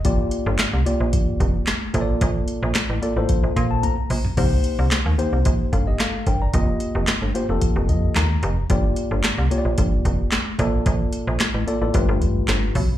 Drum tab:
CC |----------------|----------------|x---------------|----------------|
HH |x-x-x-x-x-x-x-x-|x-x-x-x-x-x-x-o-|--x-x-x-x-x-x-x-|x-x-x-x-x-x-x-x-|
CP |----x-------x---|----x-----------|----x-------x---|----x-------x---|
SD |----o-------o---|----o-----------|----o-------o---|----o-------o---|
T1 |----------------|------------o---|----------------|----------------|
T2 |----------------|--------------o-|----------------|----------------|
FT |----------------|---------------o|----------------|----------------|
BD |o-------o-o---o-|o-------o-o-----|o-------o-o---o-|o-------o-o-----|

CC |----------------|----------------|
HH |x-x-x-x-x-x-x-x-|x-x-x-x-x-x-x-o-|
CP |----x-------x---|----x-------x---|
SD |----o-------o---|----o-------o---|
T1 |----------------|----------------|
T2 |----------------|----------------|
FT |----------------|----------------|
BD |o-------o-o---o-|o-------o-o---o-|